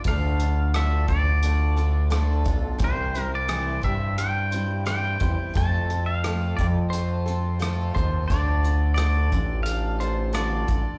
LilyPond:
<<
  \new Staff \with { instrumentName = "Pedal steel guitar" } { \time 4/4 \key d \minor \tempo 4 = 88 f''4 e''8 d''4. r4 | c''8. d''8. e''8 g''4 g''4 | a''8. f''8. d''8 c''4. c''8 | d''4 d''4 f''8 c''8 d''4 | }
  \new Staff \with { instrumentName = "Twelve-string acoustic guitar" } { \time 4/4 \key d \minor <d a d' f' a'>8 <d' f' a'>8 <d a d' f' a'>8 <d' f' a'>8 <a d' f' a'>8 <d' f' a'>8 <d a d' f' a'>8 <d' f' a'>8 | <c e g c' e' c''>8 <g c' e' c''>8 <c e g c' e' c''>8 <g c' e' c''>8 <g c' e' c''>8 <g c' e' c''>8 <c e g c' e' c''>8 <g c' e' c''>8 | <f a c' f' a'>8 <c' f' a'>8 <f a c' f' a'>8 <c' f' a'>8 <a c' f' a'>8 <c' f' a'>8 <f a c' f' a'>8 <c' f' a'>8 | <d a d' f' a'>8 <d' f' a'>8 <d a d' f' a'>8 <d' f' a'>8 <a d' f' a'>8 <d' f' a'>8 <d a d' f' a'>8 <d' f' a'>8 | }
  \new Staff \with { instrumentName = "Analog synth bass" } { \clef bass \time 4/4 \key d \minor d,4. d,2 b,,8 | c,4. g,2 e,16 r16 | f,4. f,2 ees,8 | d,4. a,,2 a,,16 r16 | }
  \new DrumStaff \with { instrumentName = "Drums" } \drummode { \time 4/4 <hh bd>8 hh8 <hh ss>8 <hh bd>8 hh8 hh8 <hh ss>8 <hh bd>8 | <hh bd>8 hh8 <hh ss>8 <hh bd>8 hh8 hh8 <hh ss>8 <hh bd>8 | <hh bd>8 hh8 <hh ss>8 <hh bd>8 hh8 hh8 <hh ss>8 <hh bd>8 | <hh bd>8 hh8 <hh ss>8 <hh bd>8 hh8 hh8 <hh ss>8 <hh bd>8 | }
>>